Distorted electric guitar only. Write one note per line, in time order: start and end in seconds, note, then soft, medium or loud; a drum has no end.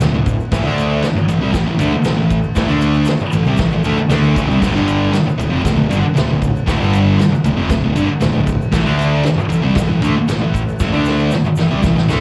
0.01 0.13 D2 medium
0.01 0.13 A2 medium
0.14 0.34 D2 medium
0.14 0.34 A2 medium
0.52 0.64 A2 loud
0.52 0.63 E3 loud
0.64 1.02 D3 medium
0.64 1.02 A3 medium
0.64 1.03 D4 medium
1.03 muted distorted electric guitar stroke soft
1.15 muted distorted electric guitar stroke medium
1.28 1.41 A2 medium
1.28 1.41 E3 medium
1.42 1.52 C3 medium
1.42 1.53 G3 loud
1.53 1.65 A2 medium
1.53 1.67 E3 medium
1.67 1.80 A2 medium
1.67 1.79 E3 medium
1.79 1.92 D3 medium
1.79 1.92 A3 medium
1.92 muted distorted electric guitar stroke medium
2.05 2.16 A2 medium
2.05 2.17 E3 medium
2.17 2.38 A2 medium
2.17 2.39 E3 medium
2.56 2.68 A2 medium
2.56 2.68 E3 loud
2.68 3.06 D3 medium
2.68 3.07 A3 medium
2.68 3.07 D4 medium
3.07 muted distorted electric guitar stroke medium
3.21 muted distorted electric guitar stroke medium
3.33 3.46 A2 medium
3.33 3.46 E3 medium
3.47 3.58 C3 loud
3.47 3.59 G3 loud
3.59 3.71 A2 medium
3.59 3.72 E3 medium
3.72 3.85 A2 medium
3.72 3.84 E3 medium
3.84 3.96 D3 medium
3.84 3.97 A3 medium
3.98 muted distorted electric guitar stroke medium
4.09 4.35 D3 loud
4.09 4.35 A3 medium
4.09 4.36 D4 loud
4.36 4.48 A2 medium
4.36 4.48 E3 loud
4.48 4.61 C3 medium
4.48 4.61 G3 loud
4.61 4.73 D2 loud
4.61 4.74 A2 loud
4.75 5.12 G2 medium
4.75 5.13 D3 medium
4.75 5.13 G3 medium
5.12 muted distorted electric guitar stroke medium
5.26 muted distorted electric guitar stroke medium
5.38 5.49 D2 medium
5.38 5.50 A2 medium
5.49 5.62 F2 medium
5.49 5.63 C3 loud
5.63 5.74 D2 medium
5.63 5.74 A2 medium
5.75 5.88 D2 medium
5.75 5.89 A2 medium
5.88 6.01 G2 medium
5.88 6.02 D3 loud
6.01 muted distorted electric guitar stroke medium
6.14 6.26 D2 medium
6.14 6.26 A2 medium
6.27 6.48 D2 medium
6.27 6.48 A2 medium
6.66 6.79 D2 medium
6.66 6.79 A2 loud
6.79 7.17 G2 medium
6.79 7.18 D3 medium
6.79 7.18 G3 medium
7.18 muted distorted electric guitar stroke soft
7.31 muted distorted electric guitar stroke medium
7.45 7.56 D2 medium
7.45 7.58 A2 medium
7.57 7.69 F2 medium
7.57 7.70 C3 loud
7.71 7.83 D2 medium
7.71 7.83 A2 medium
7.84 7.95 D2 medium
7.84 7.96 A2 medium
7.96 8.08 G2 medium
7.96 8.08 D3 loud
8.08 muted distorted electric guitar stroke medium
8.21 8.32 D2 medium
8.21 8.32 A2 medium
8.33 8.54 D2 medium
8.33 8.54 A2 medium
8.72 8.84 A2 loud
8.72 8.84 E3 loud
8.85 9.23 D3 medium
8.85 9.24 A3 medium
8.85 9.24 D4 medium
9.24 muted distorted electric guitar stroke medium
9.36 muted distorted electric guitar stroke medium
9.49 9.62 A2 medium
9.49 9.62 E3 medium
9.62 9.75 C3 loud
9.62 9.75 G3 loud
9.75 9.87 A2 medium
9.75 9.88 E3 medium
9.89 10.02 A2 medium
9.89 10.02 E3 medium
10.02 10.14 D3 loud
10.02 10.15 A3 loud
10.16 muted distorted electric guitar stroke medium
10.28 10.40 A2 medium
10.28 10.40 E3 medium
10.41 10.62 A2 medium
10.41 10.62 E3 medium
10.80 10.92 A2 medium
10.80 10.92 E3 loud
10.92 11.30 D3 medium
10.92 11.31 A3 medium
10.92 11.31 D4 medium
11.32 muted distorted electric guitar stroke medium
11.45 muted distorted electric guitar stroke medium
11.57 11.70 A2 medium
11.57 11.70 E3 medium
11.71 11.82 C3 medium
11.71 11.83 G3 loud
11.83 11.95 A2 medium
11.83 11.95 E3 medium
11.96 12.09 A2 medium
11.96 12.08 E3 medium
12.08 12.20 D3 medium
12.08 12.20 A3 loud